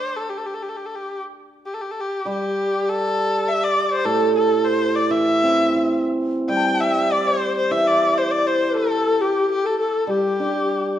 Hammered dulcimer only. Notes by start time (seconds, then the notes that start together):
2.25 G3
4.05 A2
5.10 E3
5.43 C4
5.75 E4
6.48 G3
7.71 E3
10.07 G3
10.40 D4